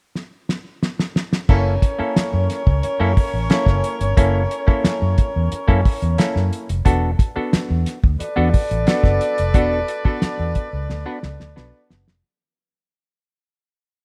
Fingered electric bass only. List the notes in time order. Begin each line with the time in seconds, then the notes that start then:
1.49 F#1
2.00 muted fingered electric bass stroke
2.17 muted fingered electric bass stroke
2.33 F#2
2.67 C#2
3.00 F#2
3.34 A1
3.50 muted fingered electric bass stroke
3.66 F#1
4.01 G1
4.18 F#1
4.68 muted fingered electric bass stroke
4.85 muted fingered electric bass stroke
5.02 F#2
5.36 E2
5.52 muted fingered electric bass stroke
5.69 F#2
6.02 E2
6.36 F#2
6.70 F1
6.86 E1
7.37 muted fingered electric bass stroke
7.54 muted fingered electric bass stroke
7.70 E2
8.04 D2
8.37 E2
8.71 A1
9.04 F#1
9.39 F1
9.54 E1
10.05 muted fingered electric bass stroke
10.23 muted fingered electric bass stroke
10.39 E2
10.73 C#2
10.91 D2
11.24 C#2
11.40 D2
11.57 B1
11.91 F#1
12.07 F1